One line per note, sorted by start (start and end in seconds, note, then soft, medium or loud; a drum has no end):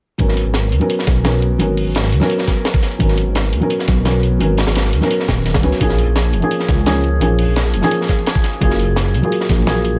0.18 0.44 G#1 medium
0.18 0.78 F#3 medium
0.18 0.79 B3 medium
0.18 0.79 C#4 medium
0.18 0.80 A#4 medium
0.18 kick loud
0.18 closed hi-hat medium
0.29 snare soft
0.37 closed hi-hat medium
0.46 0.74 G#1 medium
0.54 snare medium
0.54 closed hi-hat medium
0.72 0.80 D#2 medium
0.72 closed hi-hat medium
0.79 1.22 F#3 medium
0.79 1.22 B3 medium
0.79 1.23 C#4 medium
0.79 1.23 A#4 medium
0.79 closed hi-hat soft
0.90 closed hi-hat medium
0.99 snare soft
1.07 1.58 B1 medium
1.07 kick medium
1.07 snare soft
1.07 closed hi-hat medium
1.24 1.57 F#3 medium
1.24 1.58 B3 medium
1.24 1.58 C#4 medium
1.24 1.58 A#4 medium
1.24 snare loud
1.24 closed hi-hat medium
1.42 closed hi-hat medium
1.58 1.85 G#1 loud
1.58 2.18 F#3 medium
1.58 2.19 B3 medium
1.58 2.19 C#4 medium
1.58 2.20 A#4 medium
1.58 closed hi-hat medium
1.77 closed hi-hat medium
1.77 open hi-hat medium
1.86 2.14 G#1 medium
1.95 snare loud
1.95 closed hi-hat medium
2.04 snare soft
2.04 closed hi-hat soft
2.12 2.21 D#2 medium
2.12 closed hi-hat medium
2.20 2.97 F#3 medium
2.20 2.98 B3 medium
2.20 2.98 C#4 medium
2.20 2.99 A#4 medium
2.20 snare soft
2.20 closed hi-hat soft
2.30 closed hi-hat medium
2.39 snare soft
2.47 kick medium
2.47 snare soft
2.47 closed hi-hat medium
2.65 snare loud
2.65 closed hi-hat medium
2.74 kick loud
2.82 snare soft
2.82 closed hi-hat medium
2.92 closed hi-hat soft
2.99 3.25 G#1 loud
2.99 3.59 F#3 medium
2.99 3.59 B3 medium
2.99 3.60 C#4 medium
2.99 3.60 A#4 medium
2.99 kick loud
2.99 closed hi-hat medium
3.08 snare soft
3.17 closed hi-hat medium
3.27 3.54 G#1 medium
3.35 snare loud
3.35 closed hi-hat medium
3.53 3.61 D#2 medium
3.53 closed hi-hat medium
3.60 4.03 F#3 medium
3.60 4.03 B3 medium
3.60 4.04 C#4 medium
3.60 4.04 A#4 medium
3.60 closed hi-hat soft
3.70 closed hi-hat medium
3.79 snare soft
3.88 4.39 B1 medium
3.88 kick loud
3.88 snare soft
3.88 closed hi-hat medium
4.05 4.38 F#3 medium
4.05 4.38 B3 medium
4.05 4.39 C#4 medium
4.05 4.39 A#4 medium
4.05 snare loud
4.05 closed hi-hat medium
4.23 closed hi-hat medium
4.39 4.66 G#1 medium
4.39 4.99 F#3 medium
4.39 5.00 B3 medium
4.39 5.00 C#4 medium
4.39 5.01 A#4 medium
4.39 closed hi-hat medium
4.58 snare loud
4.58 closed hi-hat medium
4.67 4.95 G#1 medium
4.67 snare loud
4.67 closed hi-hat medium
4.76 snare loud
4.76 closed hi-hat medium
4.84 snare soft
4.84 closed hi-hat soft
4.93 5.01 D#2 loud
4.93 closed hi-hat medium
5.01 5.61 F#3 medium
5.01 5.61 B3 medium
5.01 5.62 C#4 medium
5.01 5.62 A#4 medium
5.01 snare soft
5.01 closed hi-hat soft
5.11 closed hi-hat medium
5.20 snare soft
5.28 5.62 D#1 loud
5.28 kick medium
5.28 snare medium
5.28 closed hi-hat medium
5.45 snare soft
5.45 closed hi-hat medium
5.54 kick loud
5.54 snare loud
5.54 closed hi-hat medium
5.63 5.71 C#2 loud
5.63 5.78 F#3 medium
5.63 5.79 B3 medium
5.63 5.79 C#4 medium
5.63 5.79 B4 medium
5.63 closed hi-hat medium
5.72 snare soft
5.72 closed hi-hat medium
5.72 closed hi-hat soft
5.80 6.06 A#1 loud
5.80 6.39 F3 medium
5.80 6.40 A#3 medium
5.80 6.41 C#4 medium
5.80 6.41 G#4 medium
5.80 kick loud
5.80 closed hi-hat medium
5.89 snare soft
5.98 closed hi-hat medium
6.07 6.35 A#1 medium
6.16 snare loud
6.16 closed hi-hat medium
6.33 6.42 F1 medium
6.33 closed hi-hat medium
6.41 6.83 F3 medium
6.41 6.84 A#3 medium
6.41 6.84 C#4 medium
6.41 6.85 G#4 medium
6.41 closed hi-hat soft
6.51 closed hi-hat medium
6.60 snare soft
6.68 7.20 C#2 medium
6.68 kick loud
6.68 snare soft
6.68 closed hi-hat medium
6.86 7.18 F3 medium
6.86 7.19 A#3 medium
6.86 7.19 C#4 medium
6.86 7.19 G#4 medium
6.86 snare loud
6.86 closed hi-hat medium
7.04 closed hi-hat medium
7.20 7.46 A#1 loud
7.20 7.80 F3 medium
7.20 7.80 A#3 medium
7.20 7.81 C#4 medium
7.20 7.81 G#4 medium
7.20 closed hi-hat medium
7.39 closed hi-hat medium
7.39 open hi-hat medium
7.48 7.75 A#1 medium
7.56 snare loud
7.56 closed hi-hat medium
7.65 snare soft
7.65 closed hi-hat soft
7.74 7.82 F1 medium
7.74 closed hi-hat medium
7.81 8.59 F3 medium
7.81 8.59 A#3 medium
7.81 8.60 C#4 medium
7.81 8.60 G#4 medium
7.81 snare soft
7.81 closed hi-hat soft
7.91 closed hi-hat medium
8.01 snare soft
8.08 kick medium
8.08 snare soft
8.08 closed hi-hat medium
8.26 snare loud
8.26 closed hi-hat medium
8.35 kick loud
8.43 snare soft
8.43 closed hi-hat medium
8.53 closed hi-hat soft
8.60 8.87 F#1 loud
8.60 9.20 F#3 medium
8.60 9.21 A#3 medium
8.60 9.21 F4 medium
8.60 9.22 G#4 medium
8.60 kick loud
8.60 closed hi-hat medium
8.70 snare soft
8.79 closed hi-hat medium
8.88 9.16 F#1 medium
8.96 snare loud
8.96 closed hi-hat medium
9.14 9.22 C#2 medium
9.14 closed hi-hat medium
9.22 9.64 F#3 medium
9.22 9.65 A#3 medium
9.22 9.65 F4 medium
9.22 9.66 G#4 medium
9.22 closed hi-hat soft
9.32 closed hi-hat medium
9.41 snare soft
9.49 9.99 A#1 medium
9.49 kick loud
9.49 snare soft
9.49 closed hi-hat medium
9.66 9.99 F#3 medium
9.66 9.99 A#3 medium
9.66 9.99 F4 medium
9.66 9.99 G#4 medium
9.66 snare loud
9.66 closed hi-hat medium
9.85 closed hi-hat medium